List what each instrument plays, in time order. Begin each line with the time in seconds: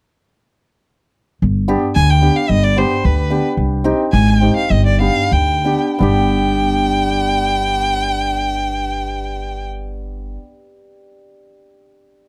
1.42 upright bass G1
1.68 hammered dulcimer B3 D4 G4
1.95 upright bass D2, violin G#5
2.10 violin G5
2.21 hammered dulcimer B3 D4 G4
2.36 violin F5
2.49 upright bass G1, violin D#5
2.63 violin D5
2.76 hammered dulcimer B3 D4 G4, violin C5
3.05 upright bass D2, violin B4
3.30 hammered dulcimer B3 D4 G4
3.57 upright bass C2
3.84 hammered dulcimer C4 D#4 G4
4.12 upright bass G#1, violin G#5
4.28 violin G5
4.41 hammered dulcimer C4 D#4 G4
4.57 violin F5
4.70 upright bass G1, violin D#5
4.86 violin D5
5.00 hammered dulcimer B3 D4 G4, violin F5
5.32 upright bass D2, violin G5
5.64 hammered dulcimer B3 D4 G4
5.99 upright bass G1, hammered dulcimer B3 D4 G4, violin G5